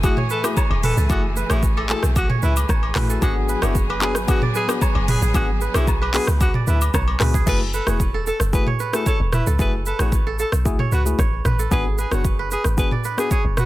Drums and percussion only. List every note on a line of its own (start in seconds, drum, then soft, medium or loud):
0.04 kick loud
0.04 high agogo medium
0.04 shaker medium
0.17 mid tom loud
0.30 shaker soft
0.44 cross-stick loud
0.44 high agogo medium
0.44 shaker medium
0.57 kick medium
0.57 low woodblock medium
0.57 shaker medium
0.71 high agogo medium
0.83 mid tom loud
0.83 open hi-hat medium
0.83 shaker medium
0.97 shaker medium
1.10 kick loud
1.10 high agogo medium
1.10 shaker medium
1.36 shaker medium
1.50 cross-stick loud
1.50 high agogo medium
1.50 shaker medium
1.63 kick medium
1.63 shaker medium
1.78 high agogo medium
1.89 clap loud
1.89 shaker medium
2.03 cross-stick loud
2.03 shaker medium
2.16 kick loud
2.16 high agogo medium
2.16 shaker medium
2.30 mid tom medium
2.42 shaker soft
2.57 high agogo medium
2.57 shaker medium
2.69 kick medium
2.69 cross-stick loud
2.69 low woodblock medium
2.69 shaker medium
2.83 high agogo medium
2.95 cross-stick medium
2.95 clap medium
2.95 mid tom loud
2.95 open hi-hat medium
2.95 shaker medium
3.10 shaker medium
3.22 kick loud
3.22 high agogo medium
3.22 shaker medium
3.49 shaker medium
3.62 cross-stick loud
3.62 high agogo medium
3.62 shaker medium
3.75 kick medium
3.75 shaker medium
3.90 high agogo medium
4.02 clap loud
4.02 shaker medium
4.15 cross-stick loud
4.15 shaker medium
4.28 kick loud
4.28 high agogo medium
4.28 shaker medium
4.42 mid tom medium
4.55 shaker soft
4.69 cross-stick loud
4.69 high agogo medium
4.69 shaker medium
4.82 kick medium
4.82 low woodblock medium
4.82 shaker medium
4.95 high agogo medium
5.08 mid tom loud
5.08 open hi-hat medium
5.08 shaker soft
5.22 shaker medium
5.34 kick loud
5.34 high agogo medium
5.34 shaker medium
5.61 shaker medium
5.74 cross-stick loud
5.74 high agogo medium
5.74 shaker medium
5.87 kick medium
5.87 low woodblock medium
5.87 shaker medium
6.03 high agogo medium
6.14 clap loud
6.14 open hi-hat medium
6.14 shaker medium
6.27 cross-stick loud
6.27 shaker medium
6.41 kick loud
6.41 high agogo medium
6.41 shaker medium
6.54 mid tom medium
6.67 shaker soft
6.81 high agogo medium
6.81 shaker medium
6.94 kick medium
6.94 cross-stick loud
6.94 low woodblock medium
6.94 shaker medium
7.08 high agogo medium
7.20 cross-stick loud
7.20 clap medium
7.20 mid tom medium
7.20 open hi-hat medium
7.20 shaker medium
7.34 kick medium
7.34 shaker medium
7.47 kick loud
7.47 crash medium
7.47 shaker medium
7.74 shaker medium
7.87 cross-stick loud
7.87 shaker medium
8.00 kick medium
8.00 shaker medium
8.27 shaker medium
8.40 cross-stick loud
8.40 shaker medium
8.53 kick loud
8.53 shaker medium
8.67 mid tom medium
8.79 shaker soft
8.93 cross-stick loud
8.93 shaker medium
9.06 kick medium
9.06 shaker medium
9.33 cross-stick medium
9.33 mid tom medium
9.33 shaker soft
9.47 shaker medium
9.59 kick loud
9.59 shaker medium
9.86 shaker medium
9.99 cross-stick loud
9.99 shaker medium
10.12 kick medium
10.12 shaker medium
10.39 shaker medium
10.52 cross-stick loud
10.52 shaker medium
10.66 kick loud
10.66 shaker medium
10.79 mid tom medium
10.92 shaker soft
11.06 shaker medium
11.19 kick medium
11.19 cross-stick medium
11.19 shaker medium
11.45 cross-stick medium
11.45 mid tom medium
11.45 shaker soft
11.59 shaker medium
11.72 kick loud
11.72 shaker medium
11.98 shaker soft
12.12 cross-stick loud
12.12 shaker medium
12.25 kick medium
12.25 shaker medium
12.51 shaker medium
12.64 cross-stick loud
12.64 shaker medium
12.78 kick loud
12.78 shaker medium
12.91 mid tom medium
13.04 shaker soft
13.18 cross-stick medium
13.18 shaker medium
13.31 kick medium
13.31 shaker medium
13.57 cross-stick medium
13.57 mid tom medium
13.57 shaker medium